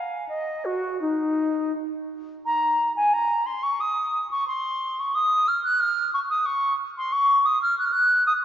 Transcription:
flute
Already playing: F5
0.28 D#5
0.65 F#4
1.01 D#4
2.45 A#5
2.96 G#5
3.13 A#5
3.46 C6
3.62 C#6
3.80 D#6
4.31 C#6
4.47 C6
4.99 C#6
5.14 D#6
5.47 F6
5.63 F#6
5.79 F6
6.13 C#6
6.29 D#6
6.45 C#6
6.97 C6
7.12 C#6
7.45 D#6
7.62 F6
7.78 F#6
7.84 F6
7.91 F#6
8.26 D#6

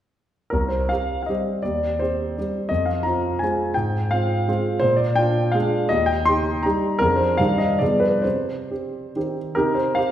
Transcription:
grand piano
0.50 C2 A#4
0.68 C5
0.89 C4 G4 F5
1.23 D#5 F5
1.29 G3 C4 G4
1.62 D#2 D5
1.99 C4 G4 C5
2.38 G3 C4 G4
2.69 F2 D#5
2.86 F5
3.03 C4 F4 A#5
3.39 G#3 C4 F4 G#5
3.74 G#2 G5
4.11 C4 F4 F5
4.48 G#3 C4 F4
4.80 A#2 C5
4.97 D5
5.15 D4 F4 G5
5.52 G#3 D4 F4 F5
5.89 D#2 D#5
6.06 G5
6.25 D#4 G4 C6
6.63 G3 D#4 G4 A#5
6.99 F2 F3 D4 G#4 A#4
7.16 C5
7.37 G2 D#3 C4 G4 F5
7.58 D#5
7.79 G2 F3 B3 G#4 D5
8.00 B4
8.22 C3 C5
8.71 C4 G4
9.16 D#3 C4 G4
9.55 C3 D#4 G4 A#4
9.75 C5
9.95 C4 G4 C5 F5

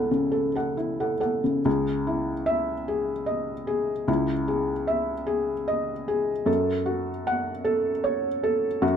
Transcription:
felt piano
Already playing: C#2 C#3 E4 A4 F#5
0.11 C#3
0.32 A4
0.55 A4 F#5
0.77 E4
1.00 A4 F#5
1.20 A4 F#5
1.44 C#3
1.65 C#2 G#4
2.07 E4
2.46 E5
2.88 G#4
3.26 D#5
3.67 G#4
4.08 C#2 E4
4.48 G#4
4.87 E5
5.27 G#4
5.68 D#5
6.08 G#4
6.46 F#2 A4
6.86 F#4
7.27 F#5
7.65 A4
8.04 C#5
8.43 A4
8.82 F#2 F#4

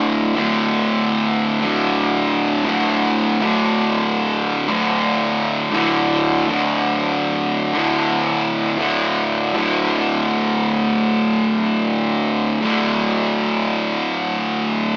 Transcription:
distorted electric guitar
Already playing: D2 A2 D3
0.35 D2 A2 D3
1.61 D2 A2 D3
2.65 D2 A2 D3
3.42 D2 A2 D3
4.68 D2 A2 D3
5.71 D2 A2 D3
6.48 D2 A2 D3
7.74 A2 D3
7.78 D2
8.77 D2 A2 D3
9.54 D2 A2
9.58 D3
12.62 D2 A2 D3

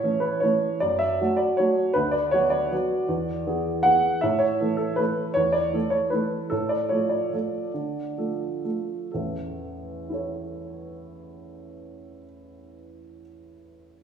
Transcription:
upright piano
Already playing: A2 C#5
0.03 E3 A3 C#4
0.20 B4
0.40 E3 A3 C#4 C#5
0.80 F#2 D5
0.99 E5
1.21 F#3 A3 F#4
1.37 D5
1.57 F#3 A3 F#4 C#5
1.94 D2 B4
2.11 D5
2.31 F#3 B3 F#4 C#5
2.50 D5
2.72 F#3 B3 F#4
3.08 E2
3.47 E3 B3 G#4
3.83 E3 B3 G#4 F#5
4.21 A2 E5
4.39 C#5
4.61 E3 A3 A4
4.77 A4
4.96 E3 A3 A4 B4
5.34 E2 C#5
5.52 D5
5.73 E3 A3 A4
5.90 C#5
6.10 E3 A3 A4 B4
6.50 A2 A4
6.69 D5
6.89 F3 A3 A4 C#5
7.09 D5
7.33 F3 A3 A4
7.74 D3
8.18 F3 A3 A4
8.64 F3 A3 A4
9.12 A1 E2 A4
10.10 E4 A4
10.14 C#5

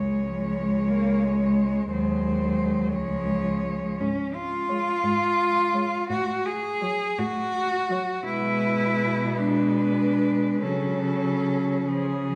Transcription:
cello
Already playing: C#2 G#3 C#5
0.21 F3
0.89 A#3
1.23 G#3
1.91 D#2 F#3 G#3 C5
2.95 C#2 F3 G#3 C#5
4.00 G#2 C#4
4.35 F4
4.69 G#3 C#5
5.04 G#2
5.74 G#3 C#5
6.09 A2 F#4
6.46 G#4
6.81 F#3 C#5
7.18 A2 F#4
7.89 F#3 C#5
8.25 B2 G#3 E4 B4
9.38 G#3 D4 B4
10.62 C#3 F#3 C#4 A4
11.88 C#3 F3 G#4
12.29 F#3

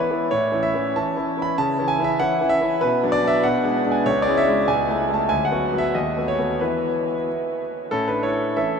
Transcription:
grand piano
0.00 B4
0.11 E3 B3 E4
0.31 A2 C#5
0.52 E3 C#4 E4
0.63 E5
0.74 E3 C#4 E4
0.96 E3 C#4 E4 A5
1.17 E3 C#4 E4
1.37 E3 C#4 E4
1.42 B5
1.58 C#3 A5
1.79 E3 C#4 E4
1.88 G#5
1.99 E3 C#4 E4
2.04 E5
2.20 E3 C#4 E4 F#5
2.41 E3 C#4 E4
2.49 E5
2.61 E3 C#4 E4
2.81 B2 B4
3.03 F#3 D4
3.12 D5
3.23 F#3 D4
3.28 E5
3.44 B2 F#5
3.64 G#3 D4
3.86 G#3 D4
3.91 G#5
4.06 C#2 C#5
4.22 D5
4.28 G#3 C#4 E4
4.37 E5
4.48 G#3 C#4 E4
4.68 C#2 G#5
4.88 A3 E4
5.10 A3 E4
5.14 A5
5.29 D2 G#5
5.45 F#5
5.51 F#3 B3 F#4
5.73 F#3 B3 F#4
5.78 E5
5.95 D#2 D#5
6.17 A3 B3 F#4
6.28 C#5
6.39 A3 B3 F#4
6.61 E3 B3 E4 B4
7.91 A2 C#4 A4
8.08 D4 B4
8.23 E4 C#5
8.57 E3 A3 C#4 A4 E5

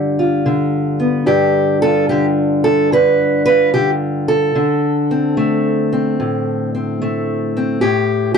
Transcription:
steel-string acoustic guitar
Already playing: G2 D3 F4 G4
0.19 F4
0.46 D3
1.00 B3
1.26 G2 G4
1.82 F4 A4
2.09 D3 G4
2.64 A4
2.92 D3 B4
3.46 F4 B4
3.74 D3 G4
4.28 A4
4.55 D3
5.11 C4
5.37 A3
5.92 C4
6.20 A2
6.75 C4
7.01 A3
7.57 C4
7.81 A2 G4
8.34 G4

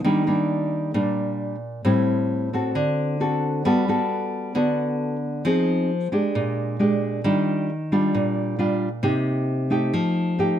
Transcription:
nylon-string guitar
0.04 D#3 G3 A#3 D4
0.27 G3 A#3 D4
0.94 A#2 G3 A#3 D4
1.85 A2 G3 C4 E4
2.53 C4 F#4 A4
2.75 D3
3.20 C4 F#4 A4
3.65 G3 B3 F#4 A4
3.88 B3 F#4 A4
4.55 D3 B3 F#4 A4
5.45 F3 C4 D#4 G#4
6.12 G#3 D4 G4
6.35 A#2
6.79 G#3 D4 G4
7.24 D#3 G3 D4 F4
7.92 G3 D4 F4
8.14 A#2
8.59 G3 D4 F4
9.03 C3 A#3 D#4 G4
9.70 A3 D#4 G4
9.94 F3
10.39 A3 D#4 G4

